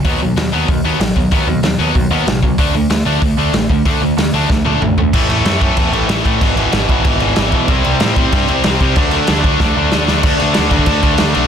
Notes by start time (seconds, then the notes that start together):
0.05 D#2 B2 F#3 B3, kick, open hi-hat
0.21 D#2 B2 F#3
0.36 D#2 B2 F#3, snare, open hi-hat
0.52 D#2 B2 F#3 B3
0.68 D#2 B2 F#3, kick, open hi-hat
0.84 D#2 B2 F#3 B3
0.99 A1 B2 F#3, snare, open hi-hat
1.16 D#2 B2 F#3, kick
1.31 D#2 B2 F#3 B3, kick, open hi-hat
1.47 D#2 B2 F#3
1.63 D#2 B2 F#3, snare, open hi-hat
1.79 D#2 B2 F#3 B3
1.94 D#2 B2 F#3, kick, open hi-hat
2.11 D#2 B2 F#3 B3
2.27 A1 B2 F#3, snare, open hi-hat
2.42 C#2 B2 F#3, kick
2.58 D2 D3 A3 D4, kick, open hi-hat
2.74 D2 D3 A3
2.90 D2 D3 A3, snare, open hi-hat
3.05 D2 D3 A3 D4
3.21 D2 D3 A3, kick, open hi-hat
3.37 D2 D3 A3 D4
3.53 A1 D3 A3, snare, open hi-hat
3.69 D2 D3 A3, kick
3.85 D2 D3 A3 D4, kick, open hi-hat
4.01 D2 D3 A3
4.17 D2 D3 A3, snare, open hi-hat
4.33 D2 D3 A3 D4
4.50 D2 D3 A3, kick, snare
4.65 D2 D3 A3 D4, high tom
4.81 A1 D3 A3, mid tom
4.97 D2 D3 A3, floor tom
5.13 A1 A2 E3 A3, kick, crash
5.29 A1 A2 E3 A3, crash
5.45 F#2 A2 E3 A3, snare, crash
5.61 A2 E3 A3, kick, crash
5.77 E2 A2 E3 A3, kick, crash
5.92 A1 A2 E3 A3, crash
6.08 A1 A2 E3 A3, snare, crash
6.25 A2 E3 A3, kick, crash
6.41 G#1 E2 B2 E3, kick, crash
6.57 E2 B2 E3, crash
6.72 G#1 E2 B2 E3, snare, crash
6.88 G#1 E2 B2 E3, kick, crash
7.04 G#1 E2 B2 E3, kick, crash
7.20 G#1 E2 B2 E3, crash
7.36 G#1 E2 B2 E3, snare, crash
7.51 B1 E2 B2 E3, kick, crash
7.67 C2 C3 G3 C4 E4, kick, crash
7.83 C2 C3 G3 C4, crash
8.00 A2 C3 G3 C4, snare, crash
8.16 C3 G3 C4, kick, crash
8.32 G2 C3 G3 C4, kick, crash
8.48 C2 C3 G3 C4, crash
8.64 C2 C3 G3 C4, snare, crash
8.80 C3 G3 C4, kick, crash
8.96 D2 D3 F#3 A3 D4, kick, crash
9.11 D3 A3 D4, crash
9.27 D2 D3 A3 D4, snare, crash
9.44 D2 D3 A3 D4, kick, crash
9.60 D2 D3 A3 D4, kick, snare
9.77 D2 D3 A3 D4
9.92 D2 D3 A3 D4, snare
10.08 D2 D3 A3 D4, snare
10.23 D2 D3 A3 D4 F#4 A4, kick, crash
10.40 D2 D3 A3 D4, crash
10.54 D2 D3 A3 D4, snare, crash
10.70 D2 D3 A3 D4, kick, crash
10.79 kick
10.86 D2 D3 A3 D4, kick, crash
11.03 D2 D3 A3 D4, kick, crash
11.18 D2 D3 A3 D4, snare, crash
11.34 B1 D3 A3 D4, crash